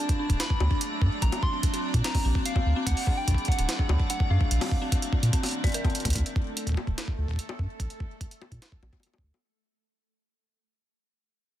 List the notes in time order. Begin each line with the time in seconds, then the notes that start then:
Already playing: F#3 A3 D4 D5 A5
0.09 kick, closed hi-hat
0.19 D4
0.30 D1, kick, closed hi-hat
0.40 B5, snare, closed hi-hat
0.50 D4, kick
0.60 D2, high bongo
0.71 D4, kick
0.81 closed hi-hat
1.02 F#2 D4, kick
1.22 A#1 A#3 C4 A#5, kick, closed hi-hat
1.32 closed hi-hat, high bongo
1.43 C6, kick
1.53 C4
1.63 kick, closed hi-hat
1.74 C4, closed hi-hat
1.94 A#2, kick, closed hi-hat
2.04 C4 A#5, snare, closed hi-hat
2.15 kick, open hi-hat, high bongo
2.25 A#1 C4
2.35 kick
2.46 F5, closed hi-hat
2.56 C4, kick, high bongo
2.66 D2
2.76 C4
2.86 D2 F#3 A3 F#5, kick, closed hi-hat
2.97 open hi-hat
3.07 D4, kick
3.17 G5
3.28 D4, kick, closed hi-hat
3.31 kick
3.35 kick, closed hi-hat
3.45 F#5, kick, closed hi-hat
3.52 closed hi-hat
3.58 D1 D4, closed hi-hat
3.69 snare, closed hi-hat
3.79 D4, kick
3.89 D2, high bongo
4.00 kick
4.10 D4 F#5, closed hi-hat
4.20 kick
4.30 F#2 D4 F5
4.41 kick
4.51 A#1 D3 A#3 C4, closed hi-hat
4.61 C4, open hi-hat, high bongo
4.64 high bongo
4.66 high bongo
4.69 kick, high bongo
4.82 C4
4.92 kick, closed hi-hat
5.02 closed hi-hat
5.13 C4, kick
5.23 A#2, closed hi-hat
5.33 C4, kick, closed hi-hat
5.43 open hi-hat, high bongo
5.46 open hi-hat
5.49 open hi-hat
5.51 open hi-hat
5.64 D5, kick, closed hi-hat, high bongo
5.67 closed hi-hat
5.69 closed hi-hat
5.72 A#4, closed hi-hat
5.74 closed hi-hat
5.84 C4, kick, closed hi-hat, high bongo
5.90 closed hi-hat
5.95 closed hi-hat
6.00 closed hi-hat
6.05 D2, kick, closed hi-hat, high bongo
6.10 closed hi-hat
6.13 D2 A3 A4, kick, closed hi-hat
6.16 closed hi-hat
6.18 closed hi-hat
6.26 closed hi-hat
6.36 kick
6.57 closed hi-hat
6.67 kick, closed hi-hat
6.69 kick
6.72 kick
6.74 kick, high bongo
6.87 D1, kick
6.98 snare, closed hi-hat
7.08 kick
7.18 D2
7.28 kick
7.31 kick
7.34 kick
7.36 kick, closed hi-hat
7.49 high bongo
7.59 F#2, kick
7.80 A#1, kick, closed hi-hat
7.90 closed hi-hat
8.00 kick
8.21 kick, closed hi-hat
8.31 closed hi-hat
8.42 high bongo
8.52 A#2, kick, closed hi-hat
8.62 snare, closed hi-hat
8.72 kick
8.82 A#1, high bongo
8.93 kick, high bongo
9.00 closed hi-hat, high bongo
9.07 high bongo
9.14 high bongo
9.18 kick
9.24 D2
9.34 high bongo